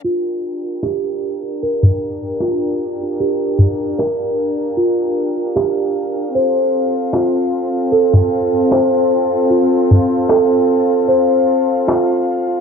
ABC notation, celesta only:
X:1
M:4/4
L:1/8
Q:"Swing 16ths" 1/4=76
K:Gm
V:1 name="Celesta"
F z G z B z F z | G z B z F z G z | c z F z A z c z | F z A z c z F z |]